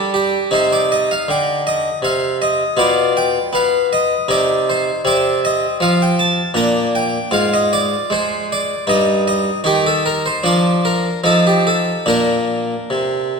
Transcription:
harpsichord
Already playing: G3 D4
0.14 G4
0.51 C3 D#4 C5
0.72 D5
0.92 D#5
1.11 F5
1.28 D3 G5
1.67 D#5
2.02 C3 F5
2.42 D#5
2.77 B2 F4 D5
3.17 G5
3.53 B3 F5
3.93 D#5
4.28 C3 D#4 D5
4.70 C5
5.05 C3 C4 D5
5.45 D#5
5.80 F3 F5
6.02 G5
6.19 A5
6.54 A#2 D4 A#5
6.95 G5
7.31 G#2 F4 F5
7.54 D#5
7.73 D5
8.10 G#3 C5
8.52 D5
8.87 G2 D#4 D#5
9.28 D#5
9.64 D#3 D#4 G4
9.86 A4
10.06 A#4
10.26 C5
10.43 F3 D4 D5
10.85 A#4
11.24 F3 D#4 A4
11.47 G4
11.67 A4
12.06 A#2 D4 A#4
12.90 C3

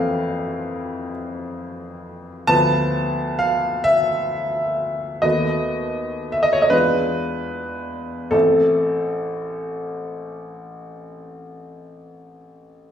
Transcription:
upright piano
Already playing: F2 E3 C4 A4 F5 G5
2.47 D2 F3 B3 B4 A5
3.39 F5
3.84 E5
5.22 D#2 A3 B3 F#4 D#5
6.32 E5
6.43 D#5
6.53 C#5
6.62 D#5
6.70 E2 G#3 D4 F4 B4
8.31 A1 A3 C4 E4 A4

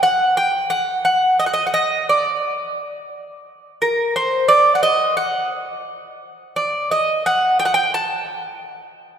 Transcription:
bouzouki
0.03 F#5
0.37 G5
0.70 F#5
1.05 F#5
1.40 D#5
1.46 F#5
1.54 D#5
1.67 F#5
1.74 D#5
2.09 D5
3.82 A#4
4.16 C5
4.48 D5
4.75 F#5
4.83 D#5
5.17 F#5
6.56 D5
6.91 D#5
7.26 F#5
7.59 G5
7.65 F#5
7.74 G5
7.94 A5

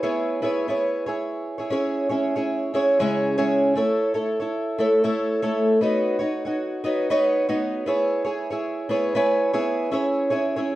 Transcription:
twelve-string acoustic guitar
0.03 B3 E4 G#4 C#5
0.42 B3 E4 G#4 C#5
0.68 B3 E4 G#4 C#5
1.06 E4 G#4 C#5
1.58 E4 G#4 C#5
1.70 C#4 E4 G#4 C#5
2.09 C#4 E4 G#4 C#5
2.36 C#4 E4 G#4 C#5
2.74 C#4 E4 G#4 C#5
3.00 C#3 G#3 C#4 E4 G#4 C#5
3.38 C#3 G#3 C#4 E4 G#4 C#5
3.75 A3 E4 A4 C#5
4.14 E4 A4 C#5
4.40 E4 A4 C#5
4.78 A3 E4 A4 C#5
5.04 A3 E4 A4 C#5
5.42 A3 E4 A4 C#5
5.81 B3 D#4 F#4 C#5
6.19 D#4 F#4 C#5
6.45 D#4 F#4 C#5
6.84 B3 D#4 F#4 C#5
7.10 B3 D#4 F#4 C#5
7.49 B3 D#4 F#4 C#5
7.86 B3 E4 G#4 C#5
8.25 E4 G#4 C#5
8.51 E4 G#4 C#5
8.89 B3 E4 G#4 C#5
9.15 B3 E4 G#4 C#5
9.53 B3 E4 G#4 C#5
9.91 C#4 E4 G#4 C#5
10.30 C#4 E4 G#4 C#5
10.56 C#4 E4 G#4 C#5

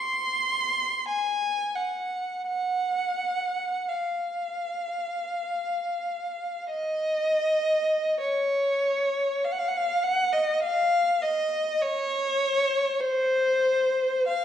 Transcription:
violin
Already playing: C6
1.08 G#5
1.76 F#5
2.47 F#5
3.89 F5
6.70 D#5
8.21 C#5
9.45 F5
9.52 F#5
9.59 F5
9.68 F#5
9.77 F5
10.04 F#5
10.33 D#5
10.63 F5
11.22 D#5
11.82 C#5
13.00 C5
14.27 F5

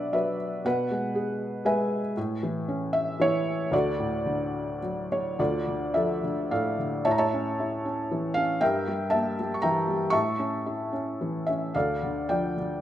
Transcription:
felt piano
Already playing: B2 F#3 D4 F#4 B4 D5 E5 F#5
0.12 F#3 B4 E5
0.65 B2 B4 F#5
0.91 G#3
1.15 G#4
1.65 G#3 B4 E5 G#5
2.17 A2
2.43 E3
2.68 C#4
2.93 E5
3.20 E3 E4 C#5
3.71 D2 F#4 A4 D5
3.99 A2
4.26 D3
4.82 F#3
5.12 C#5
5.39 D2 F4 A4 D5
5.67 D3
5.94 F3 A4 E5
6.24 D3
6.51 A2 A4 D5 F5
6.79 D3
7.05 A2 C#5 E5 A5
7.11 A#5
7.18 C#5 E5 A5
7.33 C#4
7.60 E4
7.85 C#4
8.11 E3
8.34 C#4 F5
8.61 G2 A#4 E5 G5
8.87 G3
9.10 A#3 E5 A5
9.39 G3
9.54 C#6
9.62 E3 E5 G5 A#5
9.88 G3
10.10 A2 E5 A5 C#6
10.39 C#4
10.66 E4
10.93 C#4
11.21 E3
11.47 C#4 E5
11.74 D2 A4 D5 F5
12.03 D3
12.29 F3 D5 G5
12.57 D3

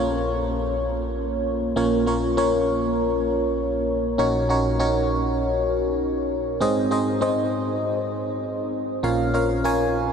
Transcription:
fm electric piano
Already playing: A#1 A#2 A#3 C#4 F4 A#4 C#5
1.76 A#1 A#2 A#3 C#4 F4 A#4 C#5
2.06 A#3 C#4 F4 A#4 C#5
2.37 A#3 C#4 F4 A#4 C#5
4.18 A#1 A#2 C#4 D#4 F#4 A#4 C#5
4.49 C#4 D#4 F#4 A#4 C#5
4.79 C#4 D#4 F#4 A#4 C#5
6.61 G#2 C4 D#4 G#4 C5 D#5
6.91 C4 D#4 G#4 C5 D#5
7.21 C4 D#4 G#4 C5 D#5
9.03 A#1 A#2 C#4 F4 A#4 C#5 F5
9.34 C#4 F4 A#4 C#5 F5
9.64 C#4 F4 A#4 C#5 G#5

